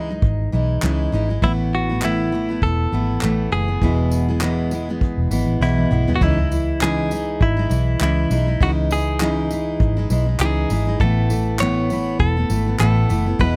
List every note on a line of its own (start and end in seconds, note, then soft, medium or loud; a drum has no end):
0.00 0.19 C#2 medium
0.00 0.49 D#4 medium
0.00 0.10 E4 medium
0.10 0.52 G#3 soft
0.10 0.53 D#4 soft
0.22 0.47 G#1 medium
0.22 kick loud
0.52 0.77 B1 medium
0.52 0.82 E3 medium
0.52 0.82 G#3 medium
0.52 0.83 D#4 medium
0.52 0.83 E4 medium
0.83 1.07 C#2 medium
0.83 1.12 C#3 medium
0.83 1.11 E3 medium
0.83 1.12 G#3 medium
0.83 1.13 D#4 medium
0.83 1.13 E4 medium
0.83 clap loud
1.12 1.37 G#1 loud
1.12 1.29 E3 medium
1.12 1.29 G#3 medium
1.12 1.29 D#4 medium
1.12 1.28 E4 medium
1.29 1.43 G#3 soft
1.29 1.43 D#4 soft
1.29 1.42 E4 soft
1.42 2.58 A1 loud
1.42 1.89 A2 medium
1.42 1.89 E3 medium
1.42 1.89 A3 medium
1.42 1.89 B3 medium
1.42 1.52 E4 medium
1.42 1.88 E4 medium
1.42 kick loud
1.75 2.04 F#4 medium
1.89 2.02 A3 soft
1.89 2.02 B3 soft
1.89 2.02 E4 soft
2.02 2.32 A2 medium
2.02 2.31 E3 medium
2.02 2.33 A3 medium
2.02 2.33 B3 medium
2.02 2.33 E4 medium
2.02 2.65 E4 medium
2.02 clap loud
2.32 2.49 E3 medium
2.32 2.49 A3 medium
2.32 2.49 B3 medium
2.32 2.47 E4 medium
2.49 2.92 A3 soft
2.49 2.93 B3 soft
2.49 2.92 E4 medium
2.62 2.86 E1 medium
2.62 3.52 A4 loud
2.62 kick loud
2.92 3.17 G#1 medium
2.92 3.21 E3 medium
2.92 3.22 A3 medium
2.92 3.22 B3 medium
2.92 3.23 E4 medium
3.21 3.47 A1 medium
3.21 3.52 A2 medium
3.21 3.51 E3 medium
3.21 3.51 A3 medium
3.21 3.53 B3 medium
3.21 3.53 E4 medium
3.21 clap medium
3.52 3.77 F#1 medium
3.52 3.68 E3 medium
3.52 3.68 A3 medium
3.52 3.68 B3 medium
3.52 3.67 E4 medium
3.52 5.57 G#4 medium
3.68 3.83 A3 soft
3.68 3.82 B3 soft
3.68 3.82 E4 medium
3.81 4.97 E1 medium
3.81 4.28 E2 medium
3.81 4.28 B2 medium
3.81 4.29 E3 medium
3.81 4.29 G#3 medium
3.81 4.28 B3 medium
3.81 4.27 E4 medium
3.81 kick loud
4.11 tambourine medium
4.28 4.41 E3 soft
4.28 4.42 G#3 medium
4.28 4.42 B3 medium
4.28 4.42 E4 medium
4.41 4.72 E2 medium
4.41 4.72 B2 medium
4.41 4.70 E3 loud
4.41 4.71 G#3 medium
4.41 4.72 B3 loud
4.41 4.72 E4 medium
4.41 clap loud
4.71 4.88 E3 medium
4.71 4.88 G#3 medium
4.71 4.88 B3 medium
4.71 4.88 E4 medium
4.71 tambourine medium
4.89 5.30 E3 soft
4.89 5.31 G#3 medium
4.89 5.31 B3 medium
4.89 5.32 E4 medium
5.01 kick loud
5.17 5.29 E1 medium
5.31 5.44 G#1 loud
5.31 5.61 E3 medium
5.31 5.61 G#3 medium
5.31 5.62 B3 medium
5.31 5.62 E4 medium
5.31 tambourine medium
5.47 5.58 A1 medium
5.60 5.85 B1 loud
5.60 5.91 E2 medium
5.60 5.92 B2 medium
5.60 5.90 E3 medium
5.60 5.90 G#3 medium
5.60 5.91 B3 medium
5.60 6.12 E4 medium
5.60 5.92 E4 medium
5.60 snare medium
5.78 high tom medium
5.91 6.04 B1 loud
5.91 6.07 E3 medium
5.91 6.08 G#3 medium
5.91 6.07 B3 medium
5.91 6.06 E4 medium
5.91 mid tom medium
6.07 6.21 E3 medium
6.07 6.21 G#3 soft
6.07 6.21 B3 medium
6.07 6.21 E4 medium
6.07 floor tom medium
6.16 6.21 F#4 medium
6.21 7.37 C#2 medium
6.21 6.38 C#3 medium
6.21 6.38 E3 medium
6.21 6.38 G#3 medium
6.21 6.38 D#4 medium
6.21 6.83 E4 medium
6.21 6.36 E4 loud
6.21 kick loud
6.38 6.51 G#3 soft
6.38 6.52 D#4 soft
6.38 6.51 E4 soft
6.51 6.80 E3 medium
6.51 6.81 G#3 medium
6.51 6.82 E4 medium
6.51 tambourine medium
6.81 7.11 C#3 medium
6.81 7.10 E3 medium
6.81 7.10 G#3 medium
6.81 7.11 D#4 medium
6.81 7.12 E4 medium
6.81 7.43 G#4 loud
6.81 clap loud
7.11 7.57 E3 medium
7.11 7.58 G#3 medium
7.11 7.57 D#4 medium
7.11 7.55 E4 medium
7.11 tambourine medium
7.41 7.65 G#1 loud
7.41 8.01 E4 loud
7.41 kick loud
7.57 7.69 G#3 medium
7.57 7.71 D#4 medium
7.57 7.70 E4 medium
7.70 7.95 B1 medium
7.70 7.99 E3 medium
7.70 8.00 G#3 medium
7.70 8.01 E4 medium
7.70 tambourine medium
8.00 8.25 C#2 medium
8.00 8.30 C#3 medium
8.00 8.29 E3 medium
8.00 8.30 G#3 medium
8.00 8.31 E4 medium
8.00 8.63 E4 medium
8.00 clap loud
8.30 8.55 B1 medium
8.30 8.47 E3 medium
8.30 8.47 G#3 medium
8.30 8.47 D#4 medium
8.30 8.46 E4 medium
8.30 tambourine medium
8.47 8.61 G#3 soft
8.47 8.61 D#4 medium
8.47 8.60 E4 medium
8.61 9.76 C#2 loud
8.61 8.91 C#3 medium
8.61 8.89 E3 medium
8.61 8.90 G#3 medium
8.61 8.91 D#4 loud
8.61 8.91 E4 medium
8.61 8.71 F#4 loud
8.61 kick loud
8.90 9.20 E3 medium
8.90 9.20 G#3 medium
8.90 9.21 D#4 medium
8.90 9.21 E4 medium
8.90 10.07 G#4 medium
8.90 tambourine medium
9.20 9.50 C#3 medium
9.20 9.49 E3 medium
9.20 9.50 G#3 medium
9.20 9.51 D#4 medium
9.20 9.51 E4 medium
9.20 clap loud
9.51 9.97 E3 medium
9.51 9.97 G#3 medium
9.51 9.97 D#4 medium
9.51 9.95 E4 medium
9.51 tambourine medium
9.80 10.05 G#1 medium
9.80 kick loud
9.97 10.10 G#3 medium
9.97 10.11 D#4 medium
9.97 10.10 E4 medium
10.10 10.35 B1 medium
10.10 10.27 E3 medium
10.10 10.27 G#3 medium
10.10 10.27 D#4 medium
10.10 10.25 E4 medium
10.10 tambourine medium
10.27 10.41 G#3 soft
10.27 10.41 D#4 soft
10.27 10.40 E4 medium
10.39 10.64 C#2 medium
10.39 10.70 C#3 medium
10.39 10.69 E3 medium
10.39 10.70 G#3 medium
10.39 10.71 D#4 medium
10.39 10.71 E4 medium
10.39 11.00 G#4 medium
10.39 clap loud
10.70 10.95 G#1 loud
10.70 10.87 E3 medium
10.70 10.87 G#3 medium
10.70 10.87 D#4 medium
10.70 10.86 E4 medium
10.70 tambourine medium
10.87 11.01 G#3 soft
10.87 11.01 D#4 medium
10.87 11.00 E4 medium
11.00 12.16 A1 loud
11.00 11.30 A2 medium
11.00 11.29 E3 medium
11.00 11.30 A3 loud
11.00 11.31 B3 medium
11.00 11.31 E4 medium
11.00 11.60 A4 loud
11.00 kick loud
11.30 11.60 E3 medium
11.30 11.60 A3 medium
11.30 11.60 B3 medium
11.30 11.61 E4 medium
11.30 tambourine medium
11.59 11.90 A2 medium
11.59 11.89 E3 medium
11.59 11.90 A3 medium
11.59 11.91 B3 loud
11.59 11.91 E4 loud
11.59 12.20 C#5 loud
11.59 clap loud
11.90 12.36 E3 medium
11.90 12.37 A3 medium
11.90 12.37 B3 medium
11.90 12.36 E4 medium
11.90 tambourine medium
12.20 12.44 E1 medium
12.20 12.76 A4 loud
12.20 kick loud
12.37 12.50 A3 medium
12.37 12.51 B3 medium
12.37 12.50 E4 medium
12.50 12.74 G#1 loud
12.50 12.66 E3 medium
12.50 12.67 A3 medium
12.50 12.67 B3 medium
12.50 12.65 E4 medium
12.50 tambourine medium
12.66 12.80 A3 soft
12.66 12.80 B3 soft
12.66 12.80 E4 medium
12.79 13.04 A1 loud
12.79 13.10 A2 medium
12.79 13.08 E3 medium
12.79 13.09 A3 medium
12.79 13.10 B3 medium
12.79 13.10 E4 medium
12.79 13.40 A4 medium
12.79 clap loud
13.09 13.34 F#1 medium
13.09 13.26 E3 medium
13.09 13.26 A3 medium
13.09 13.26 B3 medium
13.09 13.25 E4 medium
13.09 tambourine medium
13.26 13.40 A3 medium
13.26 13.39 B3 soft
13.26 13.40 E4 medium
13.39 13.56 E1 medium
13.39 13.56 E2 medium
13.39 13.56 B2 medium
13.39 13.56 E3 medium
13.39 13.56 G#3 medium
13.39 13.56 B3 medium
13.39 13.55 E4 loud
13.39 13.56 B4 loud
13.39 kick loud